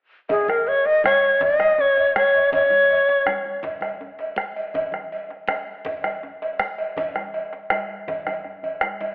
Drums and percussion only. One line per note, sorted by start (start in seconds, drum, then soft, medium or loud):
0.29 bombo low loud
0.29 cowbell medium
0.29 djembe slap medium
0.29 djembe tone medium
0.29 low conga medium
0.29 djembe bass medium
0.48 bombo rim medium
0.48 high conga medium
0.67 cowbell soft
0.67 djembe slap soft
0.85 bombo rim soft
0.85 djembe slap medium
0.85 high conga soft
1.04 bombo rim loud
1.04 cowbell soft
1.04 djembe tone medium
1.04 high conga medium
1.23 high conga soft
1.41 bombo rim soft
1.41 bombo low medium
1.41 cowbell soft
1.41 djembe slap medium
1.41 low conga medium
1.41 djembe bass medium
1.59 bombo rim medium
1.59 cowbell soft
1.59 high conga medium
1.78 djembe tone medium
1.97 cowbell soft
1.97 djembe slap medium
2.16 bombo rim medium
2.16 high conga medium
2.34 cowbell soft
2.34 djembe slap soft
2.52 bombo low medium
2.52 cowbell medium
2.52 djembe slap medium
2.52 djembe tone medium
2.52 low conga medium
2.52 djembe bass medium
2.70 high conga medium
2.90 cowbell soft
2.90 djembe slap soft
3.09 bombo rim soft
3.09 djembe slap medium
3.09 high conga soft
3.26 bombo rim medium
3.26 djembe tone medium
3.26 high conga medium
3.45 high conga soft
3.63 bombo rim soft
3.63 bombo low medium
3.63 cowbell soft
3.63 djembe slap medium
3.63 low conga medium
3.63 djembe bass medium
3.81 bombo rim medium
3.81 cowbell soft
3.81 high conga medium
4.01 djembe tone medium
4.19 cowbell soft
4.19 djembe slap medium
4.36 bombo rim medium
4.36 djembe slap soft
4.36 high conga medium
4.56 cowbell soft
4.56 djembe slap soft
4.74 bombo low medium
4.74 cowbell medium
4.74 djembe slap medium
4.74 djembe tone medium
4.74 low conga medium
4.74 djembe bass medium
4.92 bombo rim medium
4.92 high conga soft
5.12 cowbell soft
5.12 djembe slap soft
5.29 bombo rim soft
5.29 djembe slap soft
5.29 high conga soft
5.48 bombo rim medium
5.48 cowbell soft
5.48 high conga medium
5.48 djembe tone medium
5.85 bombo rim soft
5.85 bombo low medium
5.85 cowbell soft
5.85 djembe slap medium
5.85 low conga medium
5.85 djembe bass medium
6.04 bombo rim medium
6.04 cowbell soft
6.04 high conga medium
6.23 djembe tone medium
6.42 cowbell soft
6.42 djembe slap medium
6.59 bombo rim medium
6.59 djembe slap soft
6.59 high conga medium
6.78 cowbell soft
6.78 djembe slap soft
6.96 bombo low loud
6.96 cowbell medium
6.96 djembe slap medium
6.96 djembe tone medium
6.96 low conga medium
6.96 djembe bass medium
7.15 bombo rim medium
7.15 djembe slap soft
7.15 high conga medium
7.34 cowbell soft
7.34 djembe slap soft
7.34 high conga soft
7.53 bombo rim soft
7.53 djembe slap medium
7.70 bombo rim medium
7.70 cowbell soft
7.70 high conga medium
7.89 bombo rim soft
8.08 bombo low medium
8.08 cowbell soft
8.08 djembe slap medium
8.08 low conga medium
8.08 djembe bass medium
8.27 bombo rim medium
8.27 cowbell soft
8.27 high conga medium
8.27 djembe bass soft
8.44 bombo rim soft
8.44 djembe bass soft
8.63 cowbell soft
8.63 djembe bass soft
8.63 low conga soft
8.81 bombo rim medium
8.81 djembe slap medium
8.81 high conga soft
9.01 cowbell soft
9.01 djembe slap medium
9.01 high conga medium